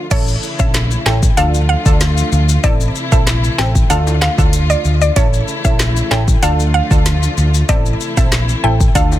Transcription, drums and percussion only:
0.11 kick, closed hi-hat, crash, maracas
0.28 maracas
0.43 maracas
0.59 kick, maracas
0.74 snare, clap, closed hi-hat, maracas
0.91 maracas
1.06 snare, clap
1.23 kick, maracas
1.37 closed hi-hat, maracas
1.54 maracas
1.86 kick, maracas
2.01 snare, closed hi-hat, maracas
2.17 maracas
2.32 maracas
2.49 maracas
2.64 kick, closed hi-hat, maracas
2.81 maracas
2.95 maracas
3.12 kick, maracas
3.27 snare, clap, closed hi-hat, maracas
3.44 maracas
3.59 snare, clap
3.75 kick, maracas
3.90 closed hi-hat, maracas
4.07 high timbale, maracas
4.22 snare, clap
4.38 kick, high timbale, maracas
4.53 closed hi-hat, maracas
4.70 maracas
4.85 maracas
5.02 maracas
5.16 kick, closed hi-hat, maracas
5.33 maracas
5.48 maracas
5.65 kick, maracas
5.79 snare, clap, closed hi-hat, maracas
5.96 maracas
6.11 snare, clap
6.28 kick, maracas
6.43 closed hi-hat, maracas
6.60 maracas
6.91 kick, maracas
7.06 snare, closed hi-hat, maracas
7.23 maracas
7.38 maracas
7.54 maracas
7.69 kick, closed hi-hat, maracas
7.86 maracas
8.01 maracas
8.17 kick, maracas
8.32 snare, clap, closed hi-hat, maracas
8.49 maracas
8.81 kick, maracas
8.95 kick, closed hi-hat, maracas
9.12 high timbale, maracas

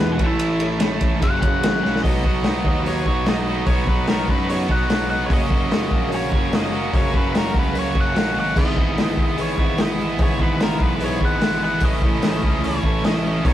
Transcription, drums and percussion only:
0.19 kick, ride
0.39 ride
0.60 ride
0.80 snare, ride
1.01 kick, ride
1.22 kick, ride
1.42 kick, ride
1.63 snare, ride
1.75 snare
1.85 snare
1.96 snare
2.04 kick, open hi-hat
2.24 kick
2.44 snare, open hi-hat
2.65 kick
2.86 open hi-hat
3.06 kick
3.26 snare, open hi-hat
3.66 kick, open hi-hat
3.87 kick
4.07 snare, open hi-hat
4.28 kick
4.49 open hi-hat
4.69 kick
4.90 snare, open hi-hat
5.30 kick, open hi-hat
5.50 kick
5.71 snare, open hi-hat
5.91 kick
6.12 open hi-hat
6.32 kick
6.53 snare, open hi-hat
6.94 kick, open hi-hat
7.14 kick
7.35 snare, open hi-hat
7.54 kick
7.75 open hi-hat
7.95 kick
8.16 snare, open hi-hat
8.56 kick, crash
8.77 kick
8.98 snare, open hi-hat
9.17 kick
9.38 open hi-hat
9.58 kick
9.78 snare, open hi-hat
10.19 kick, open hi-hat
10.40 kick
10.60 snare, open hi-hat
10.80 kick
11.00 open hi-hat
11.21 kick
11.41 snare, open hi-hat
11.80 kick, open hi-hat
12.02 kick
12.22 snare, open hi-hat
12.43 kick
12.64 open hi-hat
12.83 kick
13.04 snare, open hi-hat
13.45 kick, open hi-hat

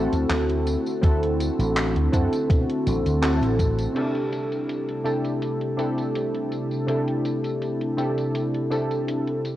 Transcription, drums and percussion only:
0.13 closed hi-hat, tambourine
0.30 clap, closed hi-hat, tambourine
0.50 closed hi-hat
0.67 closed hi-hat, tambourine
0.86 tambourine
1.03 kick, closed hi-hat, tambourine
1.23 closed hi-hat
1.40 closed hi-hat, tambourine
1.59 closed hi-hat, tambourine
1.77 clap, closed hi-hat, tambourine
1.96 closed hi-hat
2.13 kick, closed hi-hat, tambourine
2.32 closed hi-hat, tambourine
2.49 kick, closed hi-hat, tambourine
2.69 closed hi-hat
2.86 closed hi-hat, tambourine
3.06 closed hi-hat, tambourine
3.23 clap, closed hi-hat, tambourine
3.43 closed hi-hat
3.59 kick, closed hi-hat, tambourine
3.79 closed hi-hat, tambourine
3.96 closed hi-hat, crash, tambourine
4.15 closed hi-hat
4.33 closed hi-hat, tambourine
4.52 closed hi-hat, tambourine
4.69 closed hi-hat, tambourine
4.89 closed hi-hat
5.06 closed hi-hat, tambourine
5.25 closed hi-hat, tambourine
5.42 closed hi-hat, tambourine
5.61 closed hi-hat
5.79 closed hi-hat, tambourine
5.98 closed hi-hat, tambourine
6.16 closed hi-hat, tambourine
6.35 closed hi-hat
6.52 closed hi-hat, tambourine
6.71 tambourine
6.88 closed hi-hat, tambourine
7.08 closed hi-hat
7.25 closed hi-hat, tambourine
7.44 closed hi-hat, tambourine
7.62 closed hi-hat, tambourine
7.81 closed hi-hat
7.98 closed hi-hat, tambourine
8.18 closed hi-hat, tambourine
8.35 closed hi-hat, tambourine
8.54 closed hi-hat
8.72 closed hi-hat, tambourine
8.91 closed hi-hat, tambourine
9.08 closed hi-hat, tambourine
9.27 closed hi-hat
9.45 closed hi-hat, tambourine

